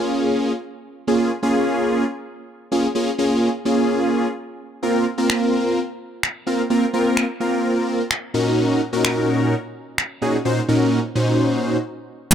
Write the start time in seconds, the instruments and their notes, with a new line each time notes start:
Already playing: analog polysynth A#3 C#4 F4 G#4
1.07 analog polysynth A#3 C#4 F4 G#4
1.43 analog polysynth A#3 C#4 F4 G#4
2.72 analog polysynth A#3 C#4 F4 G#4
2.95 analog polysynth A#3 C#4 F4 G#4
3.18 analog polysynth A#3 C#4 F4 G#4
3.65 analog polysynth A#3 C#4 F4 G#4
4.83 analog polysynth A#3 C4 F4 A#4
5.18 analog polysynth A#3 C4 F4 A#4
5.30 finger snap
6.23 finger snap
6.46 analog polysynth A#3 C4 F4 A#4
6.70 analog polysynth A#3 C4 F4 A#4
6.93 analog polysynth A#3 C4 F4 A#4
7.17 finger snap
7.40 analog polysynth A#3 C4 F4 A#4
8.11 finger snap
8.34 analog polysynth A#2 C#4 D#4 F#4 A#4
8.93 analog polysynth A#2 C#4 D#4 F#4 A#4
9.05 finger snap
9.98 finger snap
10.22 analog polysynth A#2 C#4 D#4 F#4 G#4
10.45 analog polysynth A#2 C#4 D#4 F#4 C5
10.68 analog polysynth A#2 C#4 D#4 F#4 A#4
11.15 analog polysynth A#2 C#4 D#4 F#4 C5